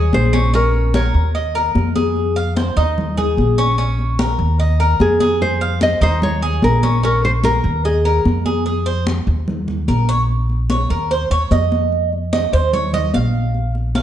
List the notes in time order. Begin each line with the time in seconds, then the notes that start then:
Already playing: G#4 C#5
0.12 A#1 C5, high conga
0.33 C#4, high conga
0.54 C#4 A#4, high conga
0.74 high conga
0.94 A#4 C#5, high conga
1.14 D#2
1.35 D#5, high conga
1.55 A#4, high conga
1.75 F2, high conga
1.96 G#4, high conga
2.16 high conga
2.36 F5, high conga
2.56 C5, high conga
2.76 D#2 D#4, high conga
2.98 high conga, low conga
3.17 G#4, high conga, low conga
3.37 A#1, high conga
3.58 C#4
3.78 C#4, high conga
3.99 high conga
4.19 A#4, high conga
4.39 D#2
4.59 D#5, high conga
4.80 A#4, high conga
5.00 F2 G#4, high conga
5.20 G#4, high conga
5.41 C5, high conga
5.61 F5, high conga
5.81 C5 D#5, high conga
6.01 D#2 D#4 C5, high conga
6.22 C#5, high conga, low conga
6.42 G#4, high conga
6.62 A#1 A#4, high conga
6.83 C#4, high conga
7.03 C#4 A#4, high conga
7.24 C5, high conga
7.44 A#4, high conga
7.64 D#2
7.84 G#4 D#5, high conga
8.05 A#4, high conga
8.25 F2, high conga
8.46 G#4, high conga
8.66 G#4, high conga
8.86 C5, high conga
9.07 high conga
9.27 D#2, high conga
9.48 high conga, low conga
9.68 high conga, low conga
9.88 A#1 A#4, high conga
10.09 C#5
10.29 high conga
10.49 high conga
10.70 C#5, high conga
10.90 D#2 A#4, high conga
11.10 C5, high conga
11.30 D#2 C#5, high conga
11.51 F2 D#5, high conga
11.72 high conga
11.92 high conga
12.13 high conga
12.33 D#5, high conga
12.53 D#2 C5, high conga
12.73 C#5, high conga, low conga
12.93 D#5, high conga, low conga
13.14 A#1 F5, high conga
13.55 high conga
13.75 high conga
13.95 F5, high conga